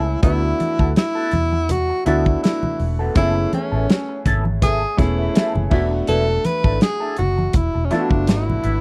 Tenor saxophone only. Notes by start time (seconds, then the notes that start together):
Already playing: E4
0.23 E4
0.97 E4
1.71 F#4
2.06 E4
2.44 E4
3.17 E4
3.55 C#4
4.63 G#4
4.99 E4
6.08 A4
6.46 B4
6.83 G#4
7.18 F#4
7.55 E4
7.85 C#4
7.93 D4
8.29 E4